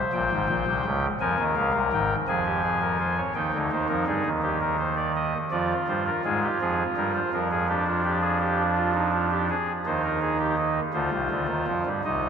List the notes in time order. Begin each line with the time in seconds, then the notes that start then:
Already playing: C5
0.13 A#1 A#2 G5
0.32 G#1 G#2
0.49 A#1 A#2
0.66 C2 C3
0.85 C#2 C#3
1.20 F2 F3 A#4 G#5
1.39 D#2 D#3
1.56 C#2 C#3 F5
1.74 C2 C3
1.93 G#1 G#2 G5
2.28 F2 F3 G#4 G#5
2.46 G4
2.63 G#4
2.82 A#4
3.00 C5
3.17 C#5
3.35 D#2 D#3 D#4 G5
3.53 D2 D3
3.71 D#2 D#3 C5
3.89 F2 F3 A#4
4.07 G2 G3 G#4
4.25 D#2 D#3
4.43 G4
4.61 A#4
4.79 C5
4.97 D5
5.16 D#5
5.51 F2 F3 F4 D5
5.88 G2 G3 C5
6.07 A#4
6.25 G#2 G#3 G#4
6.43 G4
6.61 F2 F3 G#4
6.97 G2 G3 A#4
7.15 C5
7.33 F2 F3 A#4
7.51 G#4
7.68 D4 G4
7.87 F4
8.05 G4
8.22 G#4
8.40 G4
8.76 F4
8.94 D#4
9.12 F4
9.31 G4
9.49 G#4
9.86 D#2 D#3 D#4 C5
10.04 A#4
10.22 G#4
10.39 G4
10.57 D#4
10.93 D2 D3 F4 C5
11.11 C2 C3
11.30 D2 D3
11.48 D#2 D#3
11.67 F2 F3
11.86 G2 G3
12.04 C2 C3 D#4 D#5